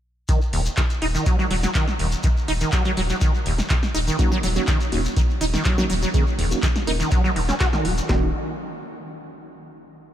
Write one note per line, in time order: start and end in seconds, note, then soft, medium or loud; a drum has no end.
0.29 0.39 D#3 medium
0.29 kick loud
0.29 closed hi-hat medium
0.29 shekere medium
0.42 shekere soft
0.53 0.68 D#1 loud
0.53 0.60 D#2 medium
0.53 open hi-hat loud
0.66 closed hi-hat medium
0.66 shekere medium
0.77 0.82 D#3 medium
0.77 kick loud
0.77 clap loud
0.77 closed hi-hat medium
0.77 shekere medium
0.90 closed hi-hat soft
0.90 shekere soft
1.02 1.17 D#1 medium
1.02 1.06 D#4 loud
1.02 open hi-hat loud
1.15 1.24 D#3 medium
1.15 closed hi-hat medium
1.15 shekere medium
1.26 1.37 F#3 medium
1.26 kick loud
1.26 closed hi-hat medium
1.26 shekere medium
1.39 1.45 F#3 loud
1.39 shekere soft
1.51 1.66 D#1 loud
1.51 1.55 F#3 loud
1.51 open hi-hat loud
1.63 1.70 F#3 medium
1.63 snare medium
1.63 closed hi-hat medium
1.63 shekere medium
1.75 1.86 D#3 medium
1.75 kick loud
1.75 clap loud
1.75 closed hi-hat medium
1.75 shekere medium
1.88 snare medium
1.88 shekere soft
1.99 2.15 D#1 loud
1.99 2.06 D#2 medium
1.99 open hi-hat loud
2.12 closed hi-hat medium
2.12 shekere medium
2.23 2.28 D#3 medium
2.23 kick loud
2.23 closed hi-hat medium
2.23 shekere medium
2.37 shekere soft
2.48 2.64 D#1 loud
2.48 2.52 D#4 loud
2.48 open hi-hat loud
2.61 2.71 D#3 medium
2.61 closed hi-hat medium
2.61 shekere medium
2.72 2.83 F#3 medium
2.72 kick loud
2.72 clap loud
2.72 closed hi-hat medium
2.72 shekere medium
2.85 2.92 F#3 loud
2.85 closed hi-hat soft
2.85 shekere soft
2.97 3.12 D#1 medium
2.97 3.01 F#3 loud
2.97 open hi-hat loud
3.09 3.16 F#3 medium
3.09 closed hi-hat medium
3.09 shekere medium
3.21 3.32 D#3 medium
3.21 kick loud
3.21 closed hi-hat medium
3.21 shekere medium
3.35 shekere soft
3.46 3.61 D#1 loud
3.46 3.53 D#2 medium
3.46 open hi-hat loud
3.58 snare medium
3.58 closed hi-hat medium
3.58 shekere medium
3.70 3.74 D#3 medium
3.70 kick loud
3.70 clap loud
3.70 closed hi-hat medium
3.70 shekere medium
3.83 snare medium
3.83 shekere soft
3.95 4.10 D#1 loud
3.95 3.99 D#4 loud
3.95 open hi-hat loud
4.07 4.17 D#3 medium
4.07 closed hi-hat medium
4.07 shekere medium
4.19 4.29 F#3 medium
4.19 4.31 A#3 loud
4.19 4.31 C#4 loud
4.19 4.31 D#4 loud
4.19 4.31 F#4 loud
4.19 kick loud
4.19 closed hi-hat medium
4.19 shekere medium
4.32 4.38 F#3 loud
4.32 shekere soft
4.43 4.59 D#1 loud
4.43 4.48 F#3 loud
4.43 open hi-hat loud
4.56 4.62 F#3 medium
4.56 4.67 A#3 medium
4.56 4.67 C#4 medium
4.56 4.67 D#4 medium
4.56 4.67 F#4 loud
4.56 closed hi-hat medium
4.56 shekere medium
4.67 4.78 D#3 medium
4.67 kick loud
4.67 clap loud
4.67 closed hi-hat medium
4.67 shekere medium
4.80 closed hi-hat soft
4.80 shekere soft
4.92 5.07 D#1 medium
4.92 4.99 D#2 medium
4.92 5.00 A#3 medium
4.92 5.00 C#4 medium
4.92 5.00 D#4 medium
4.92 5.00 F#4 loud
4.92 open hi-hat loud
5.05 closed hi-hat medium
5.05 shekere medium
5.16 5.21 D#3 medium
5.16 kick loud
5.16 closed hi-hat medium
5.16 shekere medium
5.30 shekere soft
5.41 5.56 D#1 loud
5.41 5.45 D#4 loud
5.41 open hi-hat loud
5.54 5.63 D#3 medium
5.54 snare medium
5.54 closed hi-hat soft
5.54 shekere medium
5.65 5.76 F#3 medium
5.65 kick loud
5.65 clap loud
5.65 closed hi-hat medium
5.65 shekere medium
5.78 5.84 F#3 loud
5.78 5.85 A#3 medium
5.78 5.85 C#4 medium
5.78 5.85 D#4 medium
5.78 5.85 F#4 loud
5.78 snare medium
5.78 shekere soft
5.90 6.05 D#1 loud
5.90 5.94 F#3 loud
5.90 open hi-hat loud
6.02 6.09 F#3 medium
6.02 closed hi-hat medium
6.02 shekere medium
6.14 6.25 D#3 medium
6.14 6.22 A#3 medium
6.14 6.22 C#4 medium
6.14 6.22 D#4 medium
6.14 6.22 G#4 medium
6.14 kick loud
6.14 closed hi-hat medium
6.14 shekere medium
6.27 shekere soft
6.38 6.54 D#1 loud
6.38 6.45 D#2 medium
6.38 open hi-hat loud
6.51 6.58 A#3 loud
6.51 6.58 C#4 medium
6.51 6.58 D#4 medium
6.51 6.58 F#4 loud
6.51 closed hi-hat soft
6.51 shekere medium
6.63 6.67 D#3 medium
6.63 kick loud
6.63 clap loud
6.63 closed hi-hat medium
6.63 shekere medium
6.76 snare medium
6.76 closed hi-hat soft
6.76 shekere soft
6.87 7.03 D#1 medium
6.87 6.95 A#3 medium
6.87 6.95 C#4 medium
6.87 6.91 D#4 loud
6.87 6.95 D#4 medium
6.87 6.95 A#4 medium
6.87 open hi-hat loud
7.00 7.10 D#3 medium
7.00 closed hi-hat medium
7.00 shekere medium
7.11 7.22 F#3 medium
7.11 kick loud
7.11 closed hi-hat medium
7.11 shekere medium
7.24 7.31 F#3 loud
7.24 shekere soft
7.36 7.51 D#1 loud
7.36 7.40 D#3 medium
7.36 open hi-hat loud
7.49 7.55 C#4 medium
7.49 snare medium
7.49 closed hi-hat medium
7.49 shekere medium
7.60 7.67 F#4 loud
7.60 kick loud
7.60 clap loud
7.60 closed hi-hat medium
7.60 shekere medium
7.73 7.86 D#3 medium
7.73 snare medium
7.73 shekere soft
7.85 8.00 D#1 medium
7.85 7.95 F#3 medium
7.85 open hi-hat loud
7.98 closed hi-hat medium
7.98 shekere medium
8.09 8.32 D#1 loud
8.09 8.32 D#3 medium
8.09 8.28 A#3 medium
8.09 8.28 C#4 medium
8.09 8.28 D#4 medium
8.09 8.28 F#4 loud
8.09 kick loud
8.09 snare loud
8.09 clap medium